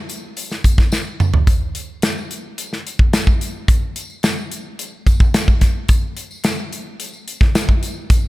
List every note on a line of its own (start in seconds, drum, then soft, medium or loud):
0.09 closed hi-hat medium
0.09 tambourine soft
0.37 closed hi-hat medium
0.37 tambourine soft
0.51 snare soft
0.51 tambourine soft
0.64 kick medium
0.64 closed hi-hat medium
0.64 tambourine soft
0.78 kick loud
0.78 snare soft
0.78 tambourine soft
0.92 snare medium
0.92 tambourine medium
1.20 mid tom medium
1.20 tambourine soft
1.34 floor tom medium
1.47 kick loud
1.47 closed hi-hat medium
1.47 tambourine soft
1.75 closed hi-hat medium
1.75 tambourine medium
2.02 snare loud
2.02 closed hi-hat medium
2.02 tambourine medium
2.18 tambourine soft
2.31 closed hi-hat medium
2.31 tambourine soft
2.58 closed hi-hat medium
2.58 tambourine soft
2.73 snare soft
2.87 closed hi-hat medium
2.87 tambourine soft
2.99 kick loud
3.13 snare loud
3.13 closed hi-hat medium
3.13 tambourine medium
3.27 kick medium
3.41 closed hi-hat medium
3.41 tambourine soft
3.68 kick loud
3.68 closed hi-hat medium
3.68 tambourine soft
3.96 closed hi-hat medium
3.96 tambourine medium
4.10 tambourine soft
4.23 snare loud
4.23 closed hi-hat medium
4.23 tambourine medium
4.38 tambourine soft
4.51 closed hi-hat medium
4.51 tambourine soft
4.79 closed hi-hat medium
4.79 tambourine soft
5.07 kick medium
5.07 closed hi-hat medium
5.07 tambourine soft
5.20 kick loud
5.20 tambourine soft
5.34 snare loud
5.34 closed hi-hat medium
5.34 tambourine medium
5.48 kick medium
5.61 kick medium
5.61 snare soft
5.61 closed hi-hat medium
5.61 tambourine soft
5.89 kick loud
5.89 closed hi-hat medium
5.89 tambourine soft
6.17 closed hi-hat medium
6.17 tambourine soft
6.31 tambourine soft
6.44 snare loud
6.44 closed hi-hat medium
6.44 tambourine medium
6.72 closed hi-hat medium
6.72 tambourine soft
7.00 closed hi-hat medium
7.00 tambourine soft
7.13 tambourine soft
7.28 closed hi-hat medium
7.28 tambourine soft
7.41 kick loud
7.41 snare soft
7.55 snare loud
7.55 closed hi-hat medium
7.55 tambourine loud
7.69 kick medium
7.83 closed hi-hat medium
7.83 tambourine soft
8.10 kick loud
8.10 closed hi-hat medium
8.10 tambourine soft